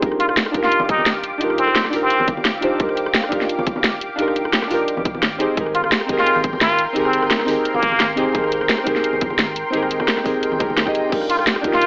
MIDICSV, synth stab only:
0, 0, Header, 1, 2, 480
1, 0, Start_track
1, 0, Tempo, 346821
1, 33, Time_signature, 4, 2, 24, 8
1, 16423, End_track
2, 0, Start_track
2, 0, Title_t, "Synth stab"
2, 0, Program_c, 0, 62
2, 0, Control_c, 0, 64, 127
2, 0, Note_on_c, 0, 62, 77
2, 16, Note_on_c, 0, 63, 73
2, 38, Note_on_c, 0, 65, 72
2, 53, Control_c, 0, 64, 0
2, 60, Note_on_c, 0, 67, 73
2, 81, Note_on_c, 0, 70, 87
2, 284, Control_c, 0, 64, 127
2, 697, Note_off_c, 0, 62, 0
2, 714, Note_on_c, 0, 62, 96
2, 718, Note_off_c, 0, 63, 0
2, 728, Note_off_c, 0, 65, 0
2, 735, Note_on_c, 0, 63, 89
2, 739, Note_off_c, 0, 67, 0
2, 750, Note_off_c, 0, 70, 0
2, 755, Note_on_c, 0, 65, 86
2, 778, Note_on_c, 0, 67, 87
2, 797, Note_on_c, 0, 70, 106
2, 1892, Note_off_c, 0, 62, 0
2, 1908, Note_on_c, 0, 62, 97
2, 1913, Note_off_c, 0, 63, 0
2, 1927, Note_off_c, 0, 65, 0
2, 1930, Note_on_c, 0, 63, 90
2, 1938, Note_off_c, 0, 67, 0
2, 1948, Note_off_c, 0, 70, 0
2, 1951, Note_on_c, 0, 65, 89
2, 1972, Note_on_c, 0, 67, 90
2, 1993, Note_on_c, 0, 70, 104
2, 2612, Note_off_c, 0, 62, 0
2, 2629, Note_on_c, 0, 62, 93
2, 2634, Note_off_c, 0, 63, 0
2, 2645, Note_off_c, 0, 65, 0
2, 2649, Note_on_c, 0, 63, 83
2, 2655, Note_off_c, 0, 67, 0
2, 2666, Note_off_c, 0, 70, 0
2, 2671, Note_on_c, 0, 65, 86
2, 2691, Note_on_c, 0, 67, 87
2, 2713, Note_on_c, 0, 70, 102
2, 3589, Note_off_c, 0, 62, 0
2, 3599, Note_off_c, 0, 63, 0
2, 3610, Note_off_c, 0, 65, 0
2, 3612, Note_on_c, 0, 62, 103
2, 3620, Note_off_c, 0, 67, 0
2, 3623, Note_on_c, 0, 63, 93
2, 3630, Note_off_c, 0, 70, 0
2, 3633, Note_on_c, 0, 65, 94
2, 3644, Note_on_c, 0, 67, 95
2, 3654, Note_on_c, 0, 72, 108
2, 3814, Note_off_c, 0, 62, 0
2, 3831, Note_on_c, 0, 62, 80
2, 3835, Note_off_c, 0, 63, 0
2, 3846, Note_off_c, 0, 65, 0
2, 3852, Note_off_c, 0, 67, 0
2, 3852, Note_on_c, 0, 63, 74
2, 3857, Note_off_c, 0, 72, 0
2, 3873, Note_on_c, 0, 65, 72
2, 3895, Note_on_c, 0, 67, 72
2, 3915, Note_on_c, 0, 70, 87
2, 4532, Note_off_c, 0, 62, 0
2, 4549, Note_on_c, 0, 62, 98
2, 4556, Note_off_c, 0, 63, 0
2, 4566, Note_off_c, 0, 65, 0
2, 4571, Note_on_c, 0, 63, 89
2, 4577, Note_off_c, 0, 67, 0
2, 4587, Note_off_c, 0, 70, 0
2, 4592, Note_on_c, 0, 65, 88
2, 4613, Note_on_c, 0, 67, 89
2, 4634, Note_on_c, 0, 70, 107
2, 5736, Note_off_c, 0, 62, 0
2, 5752, Note_on_c, 0, 62, 96
2, 5755, Note_off_c, 0, 63, 0
2, 5765, Note_off_c, 0, 65, 0
2, 5773, Note_on_c, 0, 63, 89
2, 5776, Note_off_c, 0, 67, 0
2, 5787, Note_off_c, 0, 70, 0
2, 5795, Note_on_c, 0, 65, 88
2, 5816, Note_on_c, 0, 67, 88
2, 5838, Note_on_c, 0, 70, 107
2, 6454, Note_off_c, 0, 62, 0
2, 6470, Note_on_c, 0, 62, 95
2, 6476, Note_off_c, 0, 63, 0
2, 6487, Note_off_c, 0, 65, 0
2, 6493, Note_on_c, 0, 63, 87
2, 6497, Note_off_c, 0, 67, 0
2, 6508, Note_off_c, 0, 70, 0
2, 6514, Note_on_c, 0, 65, 84
2, 6536, Note_on_c, 0, 67, 89
2, 6556, Note_on_c, 0, 70, 103
2, 7429, Note_off_c, 0, 62, 0
2, 7441, Note_off_c, 0, 63, 0
2, 7451, Note_off_c, 0, 65, 0
2, 7451, Note_on_c, 0, 60, 103
2, 7454, Note_off_c, 0, 67, 0
2, 7462, Note_on_c, 0, 63, 95
2, 7471, Note_on_c, 0, 67, 89
2, 7472, Note_off_c, 0, 70, 0
2, 7483, Note_on_c, 0, 68, 95
2, 7494, Control_c, 0, 64, 0
2, 7494, Note_on_c, 0, 72, 112
2, 7653, Note_off_c, 0, 60, 0
2, 7670, Note_on_c, 0, 60, 77
2, 7673, Note_off_c, 0, 63, 0
2, 7685, Note_off_c, 0, 67, 0
2, 7690, Note_on_c, 0, 63, 73
2, 7691, Note_off_c, 0, 68, 0
2, 7697, Note_off_c, 0, 72, 0
2, 7712, Note_on_c, 0, 67, 71
2, 7713, Control_c, 0, 64, 127
2, 7733, Note_on_c, 0, 68, 71
2, 7755, Note_on_c, 0, 70, 85
2, 8378, Note_off_c, 0, 60, 0
2, 8395, Note_off_c, 0, 63, 0
2, 8395, Note_on_c, 0, 60, 96
2, 8406, Note_off_c, 0, 67, 0
2, 8415, Note_on_c, 0, 63, 89
2, 8416, Note_off_c, 0, 68, 0
2, 8427, Note_off_c, 0, 70, 0
2, 8435, Note_on_c, 0, 67, 88
2, 8457, Note_on_c, 0, 68, 87
2, 8478, Note_on_c, 0, 70, 108
2, 9573, Note_off_c, 0, 60, 0
2, 9589, Note_on_c, 0, 60, 100
2, 9594, Note_off_c, 0, 63, 0
2, 9607, Note_off_c, 0, 67, 0
2, 9610, Note_on_c, 0, 63, 91
2, 9618, Note_off_c, 0, 68, 0
2, 9629, Note_off_c, 0, 70, 0
2, 9631, Note_on_c, 0, 67, 89
2, 9653, Note_on_c, 0, 68, 87
2, 9674, Note_on_c, 0, 70, 106
2, 10294, Note_off_c, 0, 60, 0
2, 10310, Note_on_c, 0, 60, 95
2, 10315, Note_off_c, 0, 63, 0
2, 10325, Note_off_c, 0, 67, 0
2, 10332, Note_on_c, 0, 63, 85
2, 10336, Note_off_c, 0, 68, 0
2, 10347, Note_off_c, 0, 70, 0
2, 10354, Note_on_c, 0, 67, 87
2, 10374, Note_on_c, 0, 68, 85
2, 10395, Note_on_c, 0, 70, 107
2, 11269, Note_off_c, 0, 60, 0
2, 11280, Note_off_c, 0, 63, 0
2, 11291, Note_off_c, 0, 67, 0
2, 11291, Note_on_c, 0, 60, 101
2, 11301, Note_off_c, 0, 68, 0
2, 11302, Note_on_c, 0, 63, 94
2, 11312, Note_off_c, 0, 70, 0
2, 11312, Note_on_c, 0, 67, 93
2, 11323, Note_on_c, 0, 68, 91
2, 11333, Note_on_c, 0, 72, 112
2, 11496, Note_off_c, 0, 60, 0
2, 11513, Note_on_c, 0, 60, 76
2, 11517, Note_off_c, 0, 63, 0
2, 11525, Note_off_c, 0, 67, 0
2, 11531, Note_off_c, 0, 68, 0
2, 11533, Note_on_c, 0, 63, 73
2, 11536, Note_off_c, 0, 72, 0
2, 11554, Note_on_c, 0, 67, 72
2, 11575, Note_on_c, 0, 68, 71
2, 11595, Note_on_c, 0, 70, 89
2, 12213, Note_off_c, 0, 60, 0
2, 12230, Note_on_c, 0, 60, 97
2, 12236, Note_off_c, 0, 63, 0
2, 12247, Note_off_c, 0, 67, 0
2, 12251, Note_on_c, 0, 63, 88
2, 12257, Note_off_c, 0, 68, 0
2, 12267, Note_off_c, 0, 70, 0
2, 12272, Note_on_c, 0, 67, 91
2, 12292, Note_on_c, 0, 68, 88
2, 12314, Note_on_c, 0, 70, 104
2, 13414, Note_off_c, 0, 60, 0
2, 13431, Note_on_c, 0, 60, 97
2, 13435, Note_off_c, 0, 63, 0
2, 13445, Note_off_c, 0, 67, 0
2, 13453, Note_on_c, 0, 63, 89
2, 13456, Note_off_c, 0, 68, 0
2, 13466, Note_off_c, 0, 70, 0
2, 13473, Note_on_c, 0, 67, 90
2, 13495, Note_on_c, 0, 68, 89
2, 13516, Note_on_c, 0, 70, 104
2, 14145, Note_off_c, 0, 60, 0
2, 14156, Note_off_c, 0, 63, 0
2, 14166, Note_off_c, 0, 67, 0
2, 14172, Note_on_c, 0, 60, 98
2, 14177, Note_off_c, 0, 68, 0
2, 14181, Note_on_c, 0, 63, 85
2, 14188, Note_off_c, 0, 70, 0
2, 14193, Note_on_c, 0, 67, 88
2, 14202, Note_on_c, 0, 68, 90
2, 14214, Note_on_c, 0, 70, 106
2, 14636, Note_off_c, 0, 60, 0
2, 14645, Note_off_c, 0, 63, 0
2, 14650, Note_off_c, 0, 67, 0
2, 14653, Note_on_c, 0, 60, 83
2, 14655, Note_off_c, 0, 68, 0
2, 14661, Note_off_c, 0, 70, 0
2, 14662, Note_on_c, 0, 63, 78
2, 14673, Note_on_c, 0, 67, 76
2, 14684, Note_on_c, 0, 68, 74
2, 14694, Note_on_c, 0, 70, 93
2, 14999, Note_off_c, 0, 60, 0
2, 15004, Note_off_c, 0, 63, 0
2, 15009, Note_off_c, 0, 67, 0
2, 15015, Note_off_c, 0, 68, 0
2, 15017, Note_on_c, 0, 60, 99
2, 15020, Note_off_c, 0, 70, 0
2, 15028, Note_on_c, 0, 63, 94
2, 15039, Note_on_c, 0, 67, 93
2, 15050, Note_on_c, 0, 68, 91
2, 15060, Note_on_c, 0, 75, 111
2, 15350, Note_on_c, 0, 62, 82
2, 15355, Note_off_c, 0, 60, 0
2, 15355, Note_off_c, 0, 63, 0
2, 15366, Note_off_c, 0, 67, 0
2, 15371, Note_off_c, 0, 68, 0
2, 15372, Note_on_c, 0, 63, 72
2, 15376, Note_off_c, 0, 75, 0
2, 15392, Note_on_c, 0, 65, 70
2, 15412, Control_c, 0, 64, 0
2, 15415, Note_on_c, 0, 67, 71
2, 15436, Note_on_c, 0, 70, 87
2, 15651, Control_c, 0, 64, 127
2, 16055, Note_off_c, 0, 62, 0
2, 16072, Note_on_c, 0, 62, 96
2, 16075, Note_off_c, 0, 63, 0
2, 16086, Note_off_c, 0, 65, 0
2, 16093, Note_on_c, 0, 63, 88
2, 16097, Note_off_c, 0, 67, 0
2, 16108, Note_off_c, 0, 70, 0
2, 16115, Note_on_c, 0, 65, 85
2, 16136, Note_on_c, 0, 67, 88
2, 16157, Note_on_c, 0, 70, 107
2, 16423, Note_off_c, 0, 62, 0
2, 16423, Note_off_c, 0, 63, 0
2, 16423, Note_off_c, 0, 65, 0
2, 16423, Note_off_c, 0, 67, 0
2, 16423, Note_off_c, 0, 70, 0
2, 16423, End_track
0, 0, End_of_file